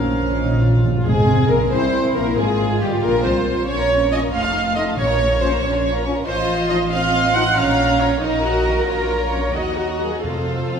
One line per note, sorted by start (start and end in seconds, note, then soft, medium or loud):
0.00 0.85 A#1 medium
0.00 0.85 A#2 medium
0.00 0.79 F3 soft
0.00 0.80 F3 medium
0.00 0.36 A#3 medium
0.00 0.80 C#4 soft
0.00 0.85 C#4 medium
0.00 0.80 A#4 medium
0.00 0.69 C#5 medium
0.00 0.82 F5 medium
0.06 0.13 A#2 soft
0.14 0.21 A#2 soft
0.22 0.29 A#2 soft
0.30 0.37 A#2 soft
0.36 0.45 A#2 soft
0.36 0.80 C#4 soft
0.36 0.58 D#4 medium
0.46 0.52 A#2 medium
0.53 0.61 A#2 medium
0.59 0.68 A#2 medium
0.59 1.05 F4 medium
0.70 0.76 A#2 medium
0.77 0.84 A#2 medium
0.85 0.92 A#2 medium
0.93 1.01 A#2 medium
1.05 1.47 G#1 medium
1.05 1.68 F2 medium
1.05 1.46 G#3 medium
1.05 1.68 C4 medium
1.05 1.46 G#4 medium
1.05 1.50 G#4 medium
1.05 1.47 G#4 medium
1.49 1.71 A#1 medium
1.49 1.59 A#3 medium
1.49 1.72 A#4 medium
1.71 2.15 C2 medium
1.71 2.15 C4 medium
1.71 2.37 E4 medium
1.71 2.15 C5 medium
2.15 2.37 A#1 medium
2.15 2.38 A#3 medium
2.15 2.37 A#4 medium
2.37 2.81 G#1 medium
2.37 2.81 G#3 medium
2.37 3.68 F4 medium
2.37 2.81 G#4 medium
2.37 2.80 G#4 medium
2.37 2.81 G#4 medium
2.81 3.03 G1 medium
2.81 2.92 G3 medium
2.81 3.02 G4 medium
2.81 3.03 G4 medium
2.81 2.89 G4 medium
3.02 3.24 A#1 medium
3.02 3.24 A#3 medium
3.02 3.24 A#4 medium
3.23 3.68 C2 medium
3.23 3.67 C4 medium
3.23 3.67 C5 medium
3.23 3.68 C5 medium
3.67 4.25 A#1 medium
3.67 3.78 C#4 medium
3.67 4.31 C#4 medium
3.67 4.10 C#5 loud
3.67 3.78 C#5 medium
3.67 3.78 C#6 medium
3.79 3.90 F4 medium
3.79 3.90 A#4 soft
3.79 3.90 A#5 soft
3.90 4.00 C#4 soft
3.90 4.00 C#5 soft
3.90 4.01 C#6 medium
4.00 4.11 F4 medium
4.00 4.11 A#4 medium
4.00 4.11 A#5 soft
4.10 4.19 F3 medium
4.10 4.21 C#4 soft
4.10 4.18 C#4 medium
4.10 4.21 C#5 soft
4.10 4.20 D#5 medium
4.10 4.21 C#6 soft
4.21 4.33 F4 soft
4.21 4.33 A#4 soft
4.21 4.32 A#5 medium
4.32 4.89 F1 medium
4.32 4.97 A3 medium
4.32 4.43 D#4 medium
4.32 4.43 D#5 medium
4.32 4.75 F5 loud
4.32 4.43 C6 medium
4.44 4.54 F4 medium
4.44 4.54 F5 soft
4.44 4.54 A5 soft
4.54 4.65 D#4 medium
4.54 4.65 D#5 medium
4.54 4.65 C6 medium
4.65 4.76 F4 soft
4.65 4.76 F5 soft
4.65 4.76 A5 soft
4.75 4.83 A3 medium
4.75 4.83 D#4 medium
4.75 4.86 D#4 medium
4.75 4.83 D#5 medium
4.75 4.86 D#5 medium
4.75 4.85 C6 medium
4.86 4.98 F4 medium
4.86 4.98 F5 medium
4.86 4.97 A5 soft
4.97 5.54 A#1 medium
4.97 5.58 A#2 medium
4.97 5.61 A#3 medium
4.97 5.08 C#4 medium
4.97 5.39 C#5 loud
4.97 5.08 C#5 medium
4.97 5.07 C#6 medium
5.07 5.19 F4 medium
5.07 5.19 A#4 medium
5.07 5.18 A#5 medium
5.19 5.30 C#4 soft
5.19 5.30 C#5 medium
5.19 5.30 C#6 medium
5.29 5.41 F4 medium
5.29 5.41 A#4 medium
5.29 5.40 A#5 medium
5.40 5.48 F3 medium
5.40 5.48 C#4 medium
5.40 5.51 C#4 medium
5.40 5.62 C5 medium
5.40 5.51 C#5 medium
5.40 5.50 C#6 medium
5.51 5.62 F4 soft
5.51 5.62 A#4 medium
5.51 5.62 A#5 medium
5.61 6.19 A#1 medium
5.61 6.26 C#4 medium
5.61 5.73 C#4 medium
5.61 5.84 C#5 medium
5.61 5.73 C#5 medium
5.61 5.72 C#6 medium
5.73 5.84 F4 medium
5.73 5.84 A#4 medium
5.73 5.84 A#5 soft
5.83 5.94 C#4 medium
5.83 5.94 C#5 medium
5.83 5.93 C#6 medium
5.94 6.05 F4 medium
5.94 6.05 A#4 medium
5.94 6.05 A#5 medium
6.05 6.13 F3 medium
6.05 6.16 C#4 medium
6.05 6.13 C#4 medium
6.05 6.16 C#5 medium
6.05 6.16 C#6 medium
6.15 6.25 F4 medium
6.15 6.26 A#4 medium
6.15 6.26 A#5 soft
6.26 7.52 A1 medium
6.26 6.87 F4 medium
6.26 6.90 F4 medium
6.26 6.66 C5 loud
6.26 6.87 D#5 medium
6.26 6.87 C6 medium
6.69 6.77 F3 medium
6.69 6.77 D#4 medium
6.69 6.77 D#5 medium
6.91 7.56 C4 medium
6.91 7.55 F4 medium
6.91 7.55 D#5 medium
6.91 7.34 F5 loud
6.91 7.55 C6 medium
7.34 7.42 F3 medium
7.34 7.42 D#4 medium
7.34 7.56 F#5 loud
7.56 8.21 A#1 medium
7.56 8.20 C#4 medium
7.56 8.20 F4 medium
7.56 8.21 C#5 medium
7.56 8.00 F5 loud
7.56 8.21 A#5 medium
8.00 8.07 F3 medium
8.00 8.07 C#4 medium
8.00 8.21 C#5 medium
8.21 8.86 A#1 medium
8.21 8.43 D#4 medium
8.21 8.86 D#4 medium
8.21 9.54 A#4 medium
8.21 8.87 D#5 medium
8.21 8.86 A#5 medium
8.43 8.87 F#4 medium
8.65 8.73 D#3 medium
8.65 8.73 D#4 medium
8.87 9.53 A#1 medium
8.87 9.55 F4 medium
8.87 9.31 A#4 medium
8.87 9.53 C#5 medium
8.87 9.53 A#5 medium
9.31 9.40 F3 medium
9.31 9.40 C#4 medium
9.31 9.54 C#5 medium
9.54 10.24 D#2 medium
9.54 10.24 F#4 medium
9.54 9.77 D#5 medium
9.54 10.24 D#5 medium
9.54 10.23 A#5 medium
9.77 10.01 F#4 medium
10.01 10.09 F#3 soft
10.01 10.09 A#3 soft
10.01 10.24 G#4 medium
10.24 10.80 F2 medium
10.24 10.80 F2 soft
10.24 10.80 F4 medium
10.24 10.80 F4 soft
10.24 10.80 A4 medium
10.24 10.80 C5 soft
10.24 10.80 F5 soft
10.71 10.79 F3 soft
10.71 10.79 C4 soft